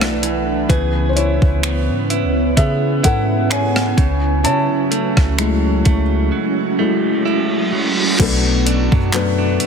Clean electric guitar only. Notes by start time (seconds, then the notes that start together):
Already playing: B2 E3 A3 D4
0.23 E3
0.70 C#3 G#4
1.16 E4
1.63 B3
2.10 E4
2.57 B3
3.03 E4
3.50 G#4
3.97 C#3
4.44 C#3 E4
4.91 A3
5.38 F#3
5.85 A3
6.32 F#3
6.79 A3
7.25 E4
7.73 F#3
8.19 B2
8.45 F#3
8.66 D4
8.92 F#3
9.13 A3
9.38 D4
9.60 A3